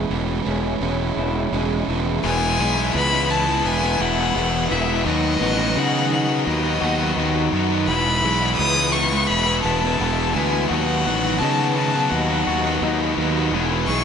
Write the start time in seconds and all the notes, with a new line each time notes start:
Already playing: E2 G#3 B3 E4 G#4 C#5 E5 B5
0.10 E1 E3 G#3 C#4 E4
0.45 E1 E3 G#3 C#4 E4
0.81 E1 E3 G#3 C#4 E4
1.17 E1 E4
1.52 E1 E3 G#3 C#4 E4
1.88 E1 E3 G#3 C#4 E4
2.23 E1 E2 E3 G#3 B3 E4 B4 E5 G#5 B5
2.58 B1 E3 G#3 B3 E4
2.75 G#3 B3 E4
2.93 C#2 E3 G#3 B3 E4 B5
3.11 G#3 B3 E4
3.30 E3 G#3 B3 E4 A5
3.46 G#3 B3 E4
3.65 E1 B3 G#5
3.81 G#3 B3 E4
3.98 E1 E3 G#3 B3 E4 F#5
4.17 G#3 B3 E4
4.33 E1 E3 G#3 B3 E4
4.69 E1 E3 G#3 B3 E4 E5
4.86 G#3 B3 E4
5.04 D#2 D#3 F#3 B3 F#4 D#5
5.40 A1 D#3 F#3 B3 F#4
5.57 F#3 B3 F#4
5.75 C#3 D#3 F#3 B3 D#4 F#4 F#5
5.93 F#3 B3 F#4
6.10 D#3 F#3 B3 F#4 F#5
6.28 F#3 B3 F#4
6.46 D#2 D#4 D#5
6.65 F#3 B3 F#4
6.81 D#2 D#3 F#3 B3 F#4
6.99 F#3 B3 F#4
7.17 D#2 D#3 F#3 B3 D#4 F#4
7.53 F#2 D#3 F#3 B3 F#4
7.70 F#3 B3 F#4
7.87 E1 E2 E3 G#3 B3 E4 E5 B5
8.23 B1 E3 G#3 B3 E4
8.40 G#3 B3 E4
8.58 C#2 E3 G#3 B3 E4 D#6
8.75 G#3 B3 E4
8.92 E3 G#3 B3 E4 C#6
9.10 G#3 B3 E4
9.27 E1 B3 B5
9.46 G#3 B3 E4
9.62 E1 E3 G#3 A5
9.66 B3 E4
9.82 G#3 B3 E4
9.99 E1 E3 G#3 B3 E4
10.33 D2 E3 G#3 B3 G#5
10.37 E4
10.52 G#3 B3 E4
10.68 D#2 D#3 F#3 B3 F#4 D#5 F#5
10.73 F#4
11.06 A1 D#3 F#3 B3 F#4
11.24 F#3 B3 F#4
11.38 C#3 D#3 F#3 B3 D#4 A5
11.43 F#4
11.59 F#3 B3 F#4
11.74 D#3 F#3 B3 F#4 A5
11.94 F#3 B3 F#4
12.10 D#2 D#4 F#5
12.29 F#3 B3 F#4
12.47 D#2 D#3 F#3 B3 F#4
12.67 F#3 B3 F#4
12.82 D#2 D#3 F#3 B3 D#4 F#4
13.17 D#2 D#3 F#3 B3
13.22 F#4
13.36 F#3 B3 F#4
13.52 E1 E2 E3 G#3 B3 E4 G#4 E5
13.87 B1 E3 G#3 B3 G#4 C#6
13.91 E4